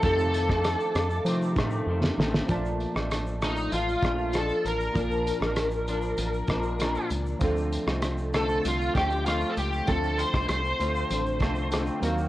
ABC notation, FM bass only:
X:1
M:4/4
L:1/16
Q:1/4=98
K:Bb
V:1 name="FM bass" clef=bass
F,,4- F,, z F,,2 F,2 A,,2 F,,2 A,,,2 | B,,,3 A,,,4- A,,, A,,,2 B,,,4 A,,,2 | B,,,3 A,,,4- A,,, A,,,2 B,,,4 _D,,2 | D,,3 C,,4- C,, C,,2 D,,4 _D,,2 |
D,,3 C,, C,,2 D,,2 A,,,2 C,,4 E,,2 |]